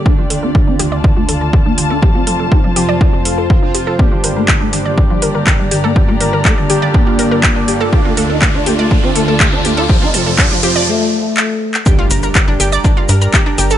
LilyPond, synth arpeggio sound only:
\new Staff \with { instrumentName = "Synth arpeggio sound" } { \time 4/4 \key g \minor \tempo 4 = 122 g'16 f'16 a'16 a'16 g'16 d'16 g'16 d''16 d'16 f'16 a'16 a'16 g'16 d'16 g'16 a'16 | g'16 f'16 a'16 a'16 g'16 d'16 g'16 d''16 d'16 f'16 a'16 a'16 g'16 d'16 g'16 a'16 | g'16 f'16 bes'16 bes'16 g'16 d'16 g'16 d''16 d'16 f'16 bes'16 bes'16 g'16 d'16 g'16 a'16 | g'16 f'16 bes'16 bes'16 g'16 d'16 g'16 d''16 d'16 f'16 bes'16 bes'16 g'16 d'16 g'16 a'16 |
g'16 f'16 a'16 a'16 g'16 d'16 g'16 d''16 d'16 f'16 a'16 a'16 g'16 d'16 g'16 a'16 | g'16 f'16 a'16 a'16 g'16 d'16 g'16 d''16 r2 | <g' g''>16 <f' f''>16 <bes' bes''>16 <bes' bes''>16 <g' g''>16 <d' d''>16 <g' g''>16 <d'' d'''>16 <d' d''>16 <f' f''>16 <bes' bes''>16 <bes' bes''>16 <g' g''>16 <d' d''>16 <g' g''>16 <a' a''>16 | }